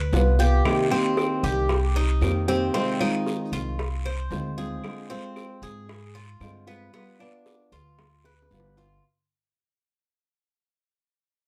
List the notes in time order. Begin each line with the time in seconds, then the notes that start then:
Already playing: B4
0.12 C2 G3 B3 F4, high bongo, low bongo, short guiro
0.39 B3 F4 G4, high bongo, short guiro
0.65 C3 D#3 A#3 C4 G4, high bongo, long guiro, claves
0.91 D#3 A#3 C4 G4
1.17 high bongo, short guiro, claves
1.43 C2 G4, high bongo, short guiro
1.69 muted nylon-string guitar stroke, high bongo, long guiro
1.95 D#4, high bongo
2.21 F2 D#3 A#3 C4 G4, high bongo, low bongo, short guiro, claves
2.48 D#3 A#3 C4 G4, high bongo, short guiro
2.74 C3 D#3 G#3 C4 F4, high bongo, long guiro
3.00 D#3 G#3 C4 D#4 F4, claves
3.27 high bongo, short guiro
3.52 C2 F4, high bongo, short guiro
3.79 muted nylon-string guitar stroke, high bongo, long guiro
4.05 C5, high bongo, claves
4.30 D2 D#3 G#3 C4 F4, high bongo, low bongo, short guiro
4.58 D#3 G#3 C4 F4 G#4, high bongo, short guiro
4.84 D3 G#3 C4 F4, high bongo, long guiro, claves
5.10 G#3 C4 F4
5.36 high bongo, short guiro, claves
5.62 G#2 G#4, high bongo, short guiro
5.89 muted nylon-string guitar stroke, high bongo, long guiro
6.15 F4, high bongo
6.40 G2 D3 G#3 C4 F4, high bongo, low bongo, short guiro, claves
6.67 G#3 B3 C4 F4, high bongo, short guiro
6.93 G3 B3 F4, high bongo, long guiro
7.19 B3 D4 F4, claves
7.46 high bongo, short guiro
7.72 D2 F4, high bongo, short guiro
7.98 muted nylon-string guitar stroke, high bongo, long guiro
8.24 B4, high bongo, claves
8.42 high bongo
8.51 G1 G3 B3 F4, short guiro
8.60 low bongo
8.77 B3 F4, low bongo, short guiro